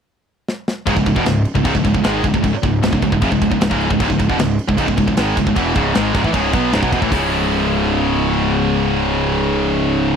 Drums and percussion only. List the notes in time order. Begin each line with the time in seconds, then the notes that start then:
0.48 snare
0.68 snare
0.87 kick, crash
0.97 kick
1.06 kick, crash
1.16 kick
1.26 snare, crash
1.45 crash
1.55 kick
1.65 kick, crash
1.75 kick
1.84 kick, crash
1.94 kick
2.04 snare, crash
2.24 kick, crash
2.34 kick
2.44 kick, crash
2.63 kick, crash
2.83 snare, crash
2.93 kick
3.02 kick, crash
3.12 kick
3.22 kick, crash
3.32 kick
3.42 kick, crash
3.51 kick
3.61 snare, crash
3.71 kick
3.81 crash
3.91 kick
4.00 kick, crash
4.10 kick
4.19 kick, crash
4.30 kick
4.39 snare, crash
4.59 crash
4.69 kick
4.78 kick, crash
4.88 kick
4.97 kick, crash
5.08 kick
5.17 snare, crash
5.37 kick, crash
5.47 kick
5.56 kick, crash
5.75 kick, crash
5.95 snare, crash
6.14 kick, snare, crash
6.24 kick
6.34 kick, crash
6.53 kick, crash
6.73 snare, crash
6.83 kick
6.92 kick, crash
7.02 kick
7.12 kick, open hi-hat